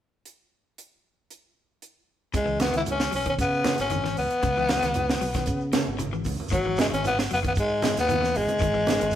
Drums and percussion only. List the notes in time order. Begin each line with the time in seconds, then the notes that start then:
0.25 closed hi-hat
0.78 closed hi-hat
1.30 closed hi-hat
1.82 closed hi-hat
2.33 kick, closed hi-hat, shekere
2.47 shekere
2.60 snare, closed hi-hat, high conga, shekere
2.73 closed hi-hat, shekere
2.85 closed hi-hat, high conga, shekere
3.00 snare, shekere
3.12 open hi-hat, shekere
3.26 kick, closed hi-hat, shekere
3.39 kick, closed hi-hat, shekere
3.54 shekere
3.64 snare, closed hi-hat, high conga, shekere
3.78 snare, closed hi-hat, shekere
3.90 closed hi-hat, high conga, shekere
4.05 snare
4.17 open hi-hat, shekere
4.31 closed hi-hat, shekere
4.43 kick, closed hi-hat, shekere
4.57 shekere
4.69 snare, closed hi-hat, high conga, shekere
4.82 snare, closed hi-hat, shekere
4.94 closed hi-hat, high conga, shekere
5.09 snare, high conga, shekere
5.21 open hi-hat, shekere
5.34 kick, snare, closed hi-hat, high conga, shekere
5.46 kick, closed hi-hat, shekere
5.61 shekere
5.73 snare, closed hi-hat, high conga, shekere
5.87 shekere
5.98 closed hi-hat, high conga, shekere
6.13 shekere
6.24 kick, open hi-hat, high conga, shekere
6.37 high conga, shekere
6.49 kick, shekere
6.53 closed hi-hat
6.63 shekere
6.76 snare, closed hi-hat, high conga, shekere
6.90 closed hi-hat, shekere
7.04 closed hi-hat, high conga, shekere
7.18 snare, shekere
7.29 open hi-hat, shekere
7.44 kick, closed hi-hat, shekere
7.55 kick, closed hi-hat, shekere
7.69 shekere
7.82 snare, closed hi-hat, high conga, shekere
7.96 snare, closed hi-hat, shekere
8.08 closed hi-hat, high conga, shekere
8.23 snare, shekere
8.35 open hi-hat, high conga, shekere
8.48 closed hi-hat, high conga, shekere
8.59 kick, closed hi-hat, shekere
8.73 shekere
8.86 snare, closed hi-hat, high conga, shekere
8.99 closed hi-hat, shekere
9.11 shekere